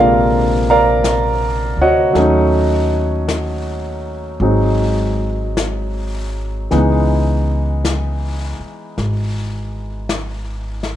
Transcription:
Already playing: upright bass A#1, grand piano C3 D3 G#3 A#3
0.00 grand piano F4 A#4 D5 F5
0.70 grand piano A#4 D5 F5 A#5
1.04 brush sweep, snare, hi-hat pedal
1.77 upright bass D2
1.82 grand piano F#4 C#5 D#5 F#5
2.13 upright bass D#2, grand piano F#3 A3 C#4, brush sweep, snare
2.18 grand piano D#4
3.28 brush sweep, snare, hi-hat pedal
4.40 upright bass G#1, grand piano F#3 G#3 C4 D#4, brush sweep
5.57 brush sweep, snare, hi-hat pedal
6.71 upright bass C#2, grand piano E3 G#3 B3 D#4, brush sweep, snare
7.85 brush sweep, snare, hi-hat pedal
8.59 muted upright bass stroke
8.98 upright bass G#1, brush sweep, snare
10.09 brush sweep, snare, hi-hat pedal
10.83 snare

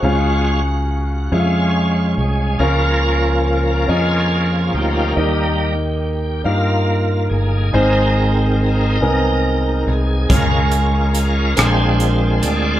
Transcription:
Already playing: tonewheel organ F#4
0.02 fingered electric bass C#2, grand piano C#3 C#4 F4 G#4 C#5 F5, tonewheel organ G#3 C#4 F4
1.32 fingered electric bass F2, tonewheel organ G#3 C#4 F4, grand piano C#4 F4 G#4 C#5 E5
1.40 grand piano F5
2.18 fingered electric bass C2, tonewheel organ G#4
2.58 fingered electric bass C#2, grand piano C#3 C#4 F4 A#4 C#5 F5, tonewheel organ F3 A#3 C#4 F4 A#4
3.87 fingered electric bass F2, grand piano C#4 F4 A#4 C#5 D#5, tonewheel organ C#4 F4 G#4
4.74 fingered electric bass D2, tonewheel organ A#3 D#4 G4
5.16 fingered electric bass D#2, grand piano D#3 A#3 D#4 G4 A#4 D#5, tonewheel organ G3 A#3 D#4
6.44 fingered electric bass G2, grand piano A#3 D#4 G4 A#4 F5, tonewheel organ A#3 F4
7.30 fingered electric bass G1, tonewheel organ G#4
7.73 fingered electric bass G#1, grand piano G#2 G#3 C4 D#4 G#4 C5, tonewheel organ G#3 C4 D#4 A#4
9.01 fingered electric bass C2, grand piano G#3 B3 D#4 G#4 A#4
9.08 grand piano C4
9.87 fingered electric bass C2, tonewheel organ G#4
10.29 fingered electric bass C#2, grand piano C#3 G#3 C#4 F4 G#4 C#5, tonewheel organ G#3 C#4 F4 A#4, kick, closed hi-hat
10.72 closed hi-hat
11.15 closed hi-hat
11.56 fingered electric bass A#1, grand piano A#2 A#3 D4 F4 G#4 A#4, tonewheel organ G#3 C4 D4 F4 G#4 C5, cross-stick, closed hi-hat
12.00 closed hi-hat
12.42 fingered electric bass D2, tonewheel organ D5, closed hi-hat

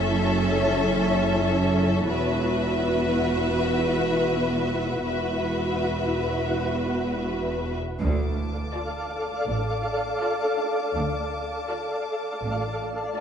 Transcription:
Already playing: double bass section F#1, cello section F#2, viola section C#4, synth texture E4 C#5 A5, violin section A4 E5
2.08 double bass section E1, cello section E2, synth texture E4 B4 F#5, viola section F#4, violin section B4 E5
5.04 double bass section E1, cello section E2, synth texture E4 B4 F#5, viola section F#4, violin section B4 E5
8.00 double bass section D2, cello section D2, synth texture A4 D5 F5, violin section A5 D6
8.74 viola section F4, violin section D5 A5
9.48 double bass section A1, cello section A2
10.22 viola section F4, violin section D5 A5
10.96 double bass section D2, cello section D2, synth texture A4 D5 F5
11.70 viola section F4, violin section D5 A5
12.45 double bass section A1, cello section A2

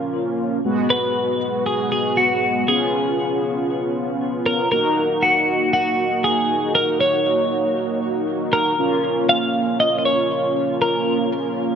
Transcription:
Already playing: analog polysynth A#3 C#4 F4
0.65 analog polysynth G#3 B3 F#4
0.90 clean electric guitar B4
1.66 clean electric guitar G#4
1.92 clean electric guitar G#4
2.17 clean electric guitar F#4
2.68 analog polysynth B3 C#4 F4, clean electric guitar G#4
4.46 clean electric guitar A#4
4.72 analog polysynth A#3 D#4 F#4, clean electric guitar A#4
5.23 clean electric guitar F#4
5.73 clean electric guitar F#4
6.24 clean electric guitar G#4
6.75 clean electric guitar A#4
7.01 clean electric guitar C#5
8.53 clean electric guitar A#4
8.78 analog polysynth A#3 C#4 F4
9.29 clean electric guitar F5
9.80 clean electric guitar D#5
9.98 clean electric guitar D#5
10.05 clean electric guitar C#5
10.82 clean electric guitar A#4

